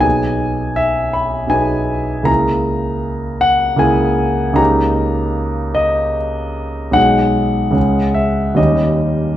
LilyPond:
\new Staff \with { instrumentName = "Grand piano" } { \time 3/4 \key gis \minor \tempo 4 = 77 << { gis''4 e''8 b''8 gis''4 | ais''4. fis''8 gis''4 | ais''4. dis''8 r4 | fis''4. e''8 dis''4 | } \\ { <b,, b dis' gis'>2 <b,, b dis' gis'>4 | <cis, ais e' gis'>2 <cis, ais e' gis'>4 | <cis, ais dis' g'>2. | <b,, gis dis' gis'>4 <cis, gis cis' gis'>4 <dis, g cis' dis'>4 | } >> }